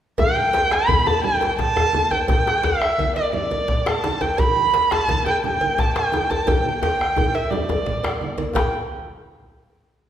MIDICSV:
0, 0, Header, 1, 5, 480
1, 0, Start_track
1, 0, Key_signature, 1, "major"
1, 0, Tempo, 349650
1, 255, Time_signature, 12, 3, 24, 8
1, 7934, Tempo, 345622
1, 13932, End_track
2, 0, Start_track
2, 0, Title_t, "Erhu"
2, 0, Program_c, 0, 110
2, 262, Note_on_c, 0, 79, 99
2, 1005, Note_on_c, 0, 83, 106
2, 1025, Note_off_c, 0, 79, 0
2, 1466, Note_on_c, 0, 81, 95
2, 1486, Note_off_c, 0, 83, 0
2, 1697, Note_off_c, 0, 81, 0
2, 1705, Note_on_c, 0, 79, 91
2, 2150, Note_off_c, 0, 79, 0
2, 2185, Note_on_c, 0, 81, 104
2, 2894, Note_on_c, 0, 79, 88
2, 2914, Note_off_c, 0, 81, 0
2, 3128, Note_off_c, 0, 79, 0
2, 3136, Note_on_c, 0, 79, 92
2, 3623, Note_on_c, 0, 76, 91
2, 3644, Note_off_c, 0, 79, 0
2, 4332, Note_off_c, 0, 76, 0
2, 4340, Note_on_c, 0, 74, 77
2, 4565, Note_off_c, 0, 74, 0
2, 4593, Note_on_c, 0, 74, 82
2, 5326, Note_on_c, 0, 81, 77
2, 5347, Note_off_c, 0, 74, 0
2, 5786, Note_on_c, 0, 79, 84
2, 5807, Note_off_c, 0, 81, 0
2, 6036, Note_on_c, 0, 83, 98
2, 6057, Note_off_c, 0, 79, 0
2, 6752, Note_on_c, 0, 81, 101
2, 6772, Note_off_c, 0, 83, 0
2, 7225, Note_off_c, 0, 81, 0
2, 7232, Note_on_c, 0, 79, 82
2, 7449, Note_off_c, 0, 79, 0
2, 7483, Note_on_c, 0, 79, 84
2, 7957, Note_on_c, 0, 81, 85
2, 7978, Note_off_c, 0, 79, 0
2, 8171, Note_off_c, 0, 81, 0
2, 8179, Note_on_c, 0, 79, 77
2, 8655, Note_on_c, 0, 81, 86
2, 8676, Note_off_c, 0, 79, 0
2, 8896, Note_on_c, 0, 79, 87
2, 8917, Note_off_c, 0, 81, 0
2, 9367, Note_off_c, 0, 79, 0
2, 9376, Note_on_c, 0, 79, 92
2, 10108, Note_on_c, 0, 76, 76
2, 10129, Note_off_c, 0, 79, 0
2, 10328, Note_on_c, 0, 74, 68
2, 10349, Note_off_c, 0, 76, 0
2, 11537, Note_off_c, 0, 74, 0
2, 11785, Note_on_c, 0, 79, 72
2, 12007, Note_off_c, 0, 79, 0
2, 13932, End_track
3, 0, Start_track
3, 0, Title_t, "Bombo"
3, 255, Note_on_c, 9, 37, 29
3, 255, Note_on_c, 9, 43, 93
3, 392, Note_off_c, 9, 37, 0
3, 392, Note_off_c, 9, 43, 0
3, 738, Note_on_c, 9, 37, 30
3, 875, Note_off_c, 9, 37, 0
3, 978, Note_on_c, 9, 37, 73
3, 1116, Note_off_c, 9, 37, 0
3, 1213, Note_on_c, 9, 43, 101
3, 1351, Note_off_c, 9, 43, 0
3, 1699, Note_on_c, 9, 37, 27
3, 1836, Note_off_c, 9, 37, 0
3, 2187, Note_on_c, 9, 37, 28
3, 2187, Note_on_c, 9, 43, 85
3, 2325, Note_off_c, 9, 37, 0
3, 2325, Note_off_c, 9, 43, 0
3, 2428, Note_on_c, 9, 37, 66
3, 2565, Note_off_c, 9, 37, 0
3, 3138, Note_on_c, 9, 37, 37
3, 3138, Note_on_c, 9, 43, 112
3, 3276, Note_off_c, 9, 37, 0
3, 3276, Note_off_c, 9, 43, 0
3, 3625, Note_on_c, 9, 37, 32
3, 3762, Note_off_c, 9, 37, 0
3, 3865, Note_on_c, 9, 37, 77
3, 4003, Note_off_c, 9, 37, 0
3, 4591, Note_on_c, 9, 37, 26
3, 4728, Note_off_c, 9, 37, 0
3, 5062, Note_on_c, 9, 37, 30
3, 5062, Note_on_c, 9, 43, 90
3, 5199, Note_off_c, 9, 37, 0
3, 5199, Note_off_c, 9, 43, 0
3, 5312, Note_on_c, 9, 37, 76
3, 5449, Note_off_c, 9, 37, 0
3, 6028, Note_on_c, 9, 37, 33
3, 6028, Note_on_c, 9, 43, 88
3, 6165, Note_off_c, 9, 37, 0
3, 6165, Note_off_c, 9, 43, 0
3, 6506, Note_on_c, 9, 37, 29
3, 6643, Note_off_c, 9, 37, 0
3, 6741, Note_on_c, 9, 37, 65
3, 6879, Note_off_c, 9, 37, 0
3, 6971, Note_on_c, 9, 43, 84
3, 7109, Note_off_c, 9, 43, 0
3, 7462, Note_on_c, 9, 37, 23
3, 7599, Note_off_c, 9, 37, 0
3, 7942, Note_on_c, 9, 37, 24
3, 7942, Note_on_c, 9, 43, 81
3, 8081, Note_off_c, 9, 37, 0
3, 8081, Note_off_c, 9, 43, 0
3, 8183, Note_on_c, 9, 37, 61
3, 8322, Note_off_c, 9, 37, 0
3, 8910, Note_on_c, 9, 43, 89
3, 9048, Note_off_c, 9, 43, 0
3, 9397, Note_on_c, 9, 37, 30
3, 9536, Note_off_c, 9, 37, 0
3, 9646, Note_on_c, 9, 37, 69
3, 9785, Note_off_c, 9, 37, 0
3, 9882, Note_on_c, 9, 43, 94
3, 10021, Note_off_c, 9, 43, 0
3, 10363, Note_on_c, 9, 37, 28
3, 10502, Note_off_c, 9, 37, 0
3, 10843, Note_on_c, 9, 43, 91
3, 10982, Note_off_c, 9, 43, 0
3, 11081, Note_on_c, 9, 37, 75
3, 11220, Note_off_c, 9, 37, 0
3, 11312, Note_on_c, 9, 37, 27
3, 11451, Note_off_c, 9, 37, 0
3, 11797, Note_on_c, 9, 43, 80
3, 11936, Note_off_c, 9, 43, 0
3, 13932, End_track
4, 0, Start_track
4, 0, Title_t, "Djembe"
4, 247, Note_on_c, 9, 62, 19
4, 247, Note_on_c, 9, 64, 67
4, 264, Note_on_c, 9, 63, 93
4, 385, Note_off_c, 9, 62, 0
4, 385, Note_off_c, 9, 64, 0
4, 401, Note_off_c, 9, 63, 0
4, 503, Note_on_c, 9, 62, 23
4, 640, Note_off_c, 9, 62, 0
4, 732, Note_on_c, 9, 62, 69
4, 748, Note_off_c, 9, 62, 0
4, 748, Note_on_c, 9, 62, 73
4, 885, Note_off_c, 9, 62, 0
4, 970, Note_on_c, 9, 63, 52
4, 987, Note_on_c, 9, 62, 68
4, 1107, Note_off_c, 9, 63, 0
4, 1125, Note_off_c, 9, 62, 0
4, 1211, Note_on_c, 9, 64, 67
4, 1228, Note_off_c, 9, 64, 0
4, 1228, Note_on_c, 9, 64, 74
4, 1365, Note_off_c, 9, 64, 0
4, 1458, Note_on_c, 9, 62, 53
4, 1472, Note_on_c, 9, 63, 95
4, 1595, Note_off_c, 9, 62, 0
4, 1609, Note_off_c, 9, 63, 0
4, 1939, Note_on_c, 9, 63, 62
4, 1958, Note_on_c, 9, 62, 68
4, 2076, Note_off_c, 9, 63, 0
4, 2096, Note_off_c, 9, 62, 0
4, 2177, Note_on_c, 9, 62, 66
4, 2177, Note_on_c, 9, 64, 78
4, 2187, Note_off_c, 9, 62, 0
4, 2187, Note_on_c, 9, 62, 69
4, 2315, Note_off_c, 9, 64, 0
4, 2324, Note_off_c, 9, 62, 0
4, 2430, Note_on_c, 9, 64, 79
4, 2567, Note_off_c, 9, 64, 0
4, 2669, Note_on_c, 9, 63, 93
4, 2806, Note_off_c, 9, 63, 0
4, 2897, Note_on_c, 9, 62, 55
4, 2897, Note_on_c, 9, 63, 57
4, 3034, Note_off_c, 9, 62, 0
4, 3034, Note_off_c, 9, 63, 0
4, 3133, Note_on_c, 9, 62, 23
4, 3133, Note_on_c, 9, 64, 68
4, 3148, Note_off_c, 9, 62, 0
4, 3148, Note_on_c, 9, 62, 77
4, 3270, Note_off_c, 9, 64, 0
4, 3286, Note_off_c, 9, 62, 0
4, 3381, Note_on_c, 9, 62, 23
4, 3396, Note_off_c, 9, 62, 0
4, 3396, Note_on_c, 9, 62, 80
4, 3533, Note_off_c, 9, 62, 0
4, 3616, Note_on_c, 9, 62, 75
4, 3628, Note_on_c, 9, 64, 74
4, 3753, Note_off_c, 9, 62, 0
4, 3765, Note_off_c, 9, 64, 0
4, 3856, Note_on_c, 9, 63, 52
4, 3993, Note_off_c, 9, 63, 0
4, 4106, Note_on_c, 9, 64, 72
4, 4243, Note_off_c, 9, 64, 0
4, 4340, Note_on_c, 9, 62, 49
4, 4478, Note_off_c, 9, 62, 0
4, 4823, Note_on_c, 9, 63, 55
4, 4960, Note_off_c, 9, 63, 0
4, 5054, Note_on_c, 9, 62, 64
4, 5054, Note_on_c, 9, 64, 68
4, 5191, Note_off_c, 9, 62, 0
4, 5191, Note_off_c, 9, 64, 0
4, 5304, Note_on_c, 9, 62, 88
4, 5442, Note_off_c, 9, 62, 0
4, 5543, Note_on_c, 9, 62, 76
4, 5680, Note_off_c, 9, 62, 0
4, 5780, Note_on_c, 9, 62, 50
4, 5780, Note_on_c, 9, 63, 49
4, 5789, Note_off_c, 9, 63, 0
4, 5789, Note_on_c, 9, 63, 68
4, 5917, Note_off_c, 9, 62, 0
4, 5926, Note_off_c, 9, 63, 0
4, 6023, Note_on_c, 9, 62, 19
4, 6023, Note_on_c, 9, 64, 61
4, 6033, Note_on_c, 9, 63, 76
4, 6161, Note_off_c, 9, 62, 0
4, 6161, Note_off_c, 9, 64, 0
4, 6170, Note_off_c, 9, 63, 0
4, 6268, Note_on_c, 9, 62, 19
4, 6405, Note_off_c, 9, 62, 0
4, 6500, Note_on_c, 9, 62, 61
4, 6512, Note_off_c, 9, 62, 0
4, 6512, Note_on_c, 9, 62, 72
4, 6649, Note_off_c, 9, 62, 0
4, 6749, Note_on_c, 9, 63, 44
4, 6754, Note_on_c, 9, 62, 104
4, 6887, Note_off_c, 9, 63, 0
4, 6891, Note_off_c, 9, 62, 0
4, 6983, Note_on_c, 9, 64, 66
4, 6986, Note_on_c, 9, 62, 69
4, 7120, Note_off_c, 9, 64, 0
4, 7123, Note_off_c, 9, 62, 0
4, 7220, Note_on_c, 9, 63, 75
4, 7221, Note_on_c, 9, 62, 45
4, 7357, Note_off_c, 9, 63, 0
4, 7359, Note_off_c, 9, 62, 0
4, 7471, Note_on_c, 9, 63, 67
4, 7608, Note_off_c, 9, 63, 0
4, 7694, Note_on_c, 9, 63, 50
4, 7831, Note_off_c, 9, 63, 0
4, 7936, Note_on_c, 9, 62, 66
4, 7936, Note_on_c, 9, 64, 68
4, 7946, Note_off_c, 9, 62, 0
4, 7946, Note_on_c, 9, 62, 73
4, 8075, Note_off_c, 9, 64, 0
4, 8085, Note_off_c, 9, 62, 0
4, 8181, Note_on_c, 9, 62, 95
4, 8320, Note_off_c, 9, 62, 0
4, 8426, Note_on_c, 9, 62, 73
4, 8565, Note_off_c, 9, 62, 0
4, 8663, Note_on_c, 9, 62, 43
4, 8663, Note_on_c, 9, 63, 48
4, 8674, Note_off_c, 9, 63, 0
4, 8674, Note_on_c, 9, 63, 69
4, 8802, Note_off_c, 9, 62, 0
4, 8813, Note_off_c, 9, 63, 0
4, 8907, Note_on_c, 9, 64, 60
4, 8908, Note_on_c, 9, 63, 105
4, 9046, Note_off_c, 9, 64, 0
4, 9047, Note_off_c, 9, 63, 0
4, 9386, Note_on_c, 9, 63, 93
4, 9389, Note_on_c, 9, 62, 67
4, 9525, Note_off_c, 9, 63, 0
4, 9528, Note_off_c, 9, 62, 0
4, 9629, Note_on_c, 9, 62, 18
4, 9629, Note_on_c, 9, 63, 43
4, 9768, Note_off_c, 9, 62, 0
4, 9768, Note_off_c, 9, 63, 0
4, 9863, Note_on_c, 9, 64, 65
4, 9870, Note_on_c, 9, 63, 91
4, 10002, Note_off_c, 9, 64, 0
4, 10008, Note_off_c, 9, 63, 0
4, 10101, Note_on_c, 9, 62, 47
4, 10240, Note_off_c, 9, 62, 0
4, 10356, Note_on_c, 9, 63, 90
4, 10494, Note_off_c, 9, 63, 0
4, 10595, Note_on_c, 9, 63, 97
4, 10596, Note_off_c, 9, 63, 0
4, 10596, Note_on_c, 9, 62, 22
4, 10596, Note_on_c, 9, 63, 58
4, 10735, Note_off_c, 9, 62, 0
4, 10735, Note_off_c, 9, 63, 0
4, 10828, Note_on_c, 9, 62, 66
4, 10828, Note_on_c, 9, 64, 67
4, 10966, Note_off_c, 9, 62, 0
4, 10966, Note_off_c, 9, 64, 0
4, 11079, Note_on_c, 9, 62, 86
4, 11218, Note_off_c, 9, 62, 0
4, 11296, Note_on_c, 9, 62, 21
4, 11435, Note_off_c, 9, 62, 0
4, 11542, Note_on_c, 9, 62, 53
4, 11542, Note_on_c, 9, 63, 48
4, 11680, Note_off_c, 9, 62, 0
4, 11680, Note_off_c, 9, 63, 0
4, 11771, Note_on_c, 9, 64, 65
4, 11795, Note_on_c, 9, 62, 113
4, 11910, Note_off_c, 9, 64, 0
4, 11934, Note_off_c, 9, 62, 0
4, 13932, End_track
5, 0, Start_track
5, 0, Title_t, "Drums"
5, 248, Note_on_c, 9, 56, 62
5, 250, Note_on_c, 9, 64, 74
5, 385, Note_off_c, 9, 56, 0
5, 387, Note_off_c, 9, 64, 0
5, 493, Note_on_c, 9, 63, 58
5, 630, Note_off_c, 9, 63, 0
5, 736, Note_on_c, 9, 56, 51
5, 874, Note_off_c, 9, 56, 0
5, 1209, Note_on_c, 9, 63, 76
5, 1218, Note_on_c, 9, 56, 44
5, 1346, Note_off_c, 9, 63, 0
5, 1355, Note_off_c, 9, 56, 0
5, 1459, Note_on_c, 9, 56, 47
5, 1597, Note_off_c, 9, 56, 0
5, 1696, Note_on_c, 9, 64, 75
5, 1834, Note_off_c, 9, 64, 0
5, 1936, Note_on_c, 9, 56, 55
5, 2073, Note_off_c, 9, 56, 0
5, 2420, Note_on_c, 9, 56, 51
5, 2422, Note_on_c, 9, 63, 23
5, 2557, Note_off_c, 9, 56, 0
5, 2559, Note_off_c, 9, 63, 0
5, 2654, Note_on_c, 9, 63, 66
5, 2791, Note_off_c, 9, 63, 0
5, 2901, Note_on_c, 9, 56, 52
5, 2905, Note_on_c, 9, 63, 23
5, 3039, Note_off_c, 9, 56, 0
5, 3042, Note_off_c, 9, 63, 0
5, 3132, Note_on_c, 9, 64, 65
5, 3134, Note_on_c, 9, 56, 58
5, 3269, Note_off_c, 9, 64, 0
5, 3271, Note_off_c, 9, 56, 0
5, 3623, Note_on_c, 9, 56, 47
5, 3760, Note_off_c, 9, 56, 0
5, 4097, Note_on_c, 9, 63, 64
5, 4108, Note_on_c, 9, 56, 45
5, 4235, Note_off_c, 9, 63, 0
5, 4245, Note_off_c, 9, 56, 0
5, 4340, Note_on_c, 9, 56, 50
5, 4478, Note_off_c, 9, 56, 0
5, 4574, Note_on_c, 9, 64, 73
5, 4712, Note_off_c, 9, 64, 0
5, 4815, Note_on_c, 9, 63, 49
5, 4824, Note_on_c, 9, 56, 50
5, 4952, Note_off_c, 9, 63, 0
5, 4961, Note_off_c, 9, 56, 0
5, 5292, Note_on_c, 9, 63, 22
5, 5302, Note_on_c, 9, 56, 45
5, 5429, Note_off_c, 9, 63, 0
5, 5439, Note_off_c, 9, 56, 0
5, 5547, Note_on_c, 9, 63, 70
5, 5685, Note_off_c, 9, 63, 0
5, 5778, Note_on_c, 9, 56, 55
5, 5788, Note_on_c, 9, 63, 22
5, 5916, Note_off_c, 9, 56, 0
5, 5925, Note_off_c, 9, 63, 0
5, 6015, Note_on_c, 9, 56, 57
5, 6017, Note_on_c, 9, 64, 70
5, 6152, Note_off_c, 9, 56, 0
5, 6154, Note_off_c, 9, 64, 0
5, 6268, Note_on_c, 9, 63, 54
5, 6405, Note_off_c, 9, 63, 0
5, 6502, Note_on_c, 9, 56, 48
5, 6640, Note_off_c, 9, 56, 0
5, 6986, Note_on_c, 9, 56, 47
5, 6988, Note_on_c, 9, 63, 67
5, 7124, Note_off_c, 9, 56, 0
5, 7125, Note_off_c, 9, 63, 0
5, 7229, Note_on_c, 9, 56, 52
5, 7366, Note_off_c, 9, 56, 0
5, 7468, Note_on_c, 9, 64, 77
5, 7605, Note_off_c, 9, 64, 0
5, 7701, Note_on_c, 9, 63, 57
5, 7703, Note_on_c, 9, 56, 53
5, 7838, Note_off_c, 9, 63, 0
5, 7840, Note_off_c, 9, 56, 0
5, 8178, Note_on_c, 9, 63, 25
5, 8186, Note_on_c, 9, 56, 50
5, 8317, Note_off_c, 9, 63, 0
5, 8325, Note_off_c, 9, 56, 0
5, 8412, Note_on_c, 9, 63, 70
5, 8550, Note_off_c, 9, 63, 0
5, 8651, Note_on_c, 9, 63, 24
5, 8668, Note_on_c, 9, 56, 53
5, 8789, Note_off_c, 9, 63, 0
5, 8807, Note_off_c, 9, 56, 0
5, 8893, Note_on_c, 9, 64, 72
5, 8905, Note_on_c, 9, 56, 61
5, 9032, Note_off_c, 9, 64, 0
5, 9044, Note_off_c, 9, 56, 0
5, 9125, Note_on_c, 9, 63, 60
5, 9264, Note_off_c, 9, 63, 0
5, 9398, Note_on_c, 9, 56, 53
5, 9537, Note_off_c, 9, 56, 0
5, 9855, Note_on_c, 9, 63, 73
5, 9879, Note_on_c, 9, 56, 49
5, 9994, Note_off_c, 9, 63, 0
5, 10018, Note_off_c, 9, 56, 0
5, 10116, Note_on_c, 9, 56, 49
5, 10255, Note_off_c, 9, 56, 0
5, 10336, Note_on_c, 9, 63, 26
5, 10336, Note_on_c, 9, 64, 77
5, 10475, Note_off_c, 9, 63, 0
5, 10475, Note_off_c, 9, 64, 0
5, 10583, Note_on_c, 9, 64, 42
5, 10590, Note_on_c, 9, 56, 50
5, 10722, Note_off_c, 9, 64, 0
5, 10729, Note_off_c, 9, 56, 0
5, 10822, Note_on_c, 9, 64, 49
5, 10961, Note_off_c, 9, 64, 0
5, 11066, Note_on_c, 9, 64, 51
5, 11068, Note_on_c, 9, 56, 43
5, 11205, Note_off_c, 9, 64, 0
5, 11207, Note_off_c, 9, 56, 0
5, 11313, Note_on_c, 9, 63, 54
5, 11452, Note_off_c, 9, 63, 0
5, 11547, Note_on_c, 9, 56, 53
5, 11547, Note_on_c, 9, 63, 60
5, 11686, Note_off_c, 9, 56, 0
5, 11686, Note_off_c, 9, 63, 0
5, 11775, Note_on_c, 9, 64, 72
5, 11784, Note_on_c, 9, 56, 67
5, 11914, Note_off_c, 9, 64, 0
5, 11923, Note_off_c, 9, 56, 0
5, 13932, End_track
0, 0, End_of_file